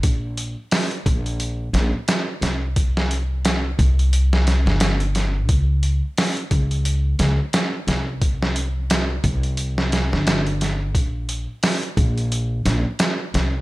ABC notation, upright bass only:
X:1
M:4/4
L:1/16
Q:"Swing 16ths" 1/4=88
K:Bb
V:1 name="Upright bass" clef=bass
B,,,3 z3 B,,,4 B,,, z3 C,,2- | C,,6 C,,4- C,, G,,,4- G,,, | _D,,3 z3 D,,4 D,, z3 C,,2- | C,,6 C,,4- C,, G,,,4- G,,, |
B,,,3 z3 B,,,4 B,,, z3 C,,2 |]